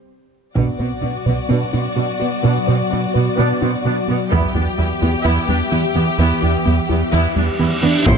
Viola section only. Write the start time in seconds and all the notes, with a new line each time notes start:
0.56 B3 D4
0.81 B3 C4
1.04 B3 D4
1.28 B3
1.51 B3 D4
1.73 B3 C4
1.97 B3 D4
2.22 B3
2.44 B3 D4
2.68 B3 C4
2.90 B3 D4
3.14 B3
3.37 B3 D4
3.62 B3 C4
3.86 B3 D4
4.09 B3
4.32 B3 E4
4.55 B3 D4
4.79 B3 E4
5.02 B3
5.25 B3 E4
5.48 B3 D4
5.71 B3 E4
5.96 B3
6.19 B3 E4
6.43 B3 D4
6.65 B3 E4
6.89 B3
7.12 B3 E4
7.37 B3 D4
7.59 B3 E4
7.82 B3
8.06 C5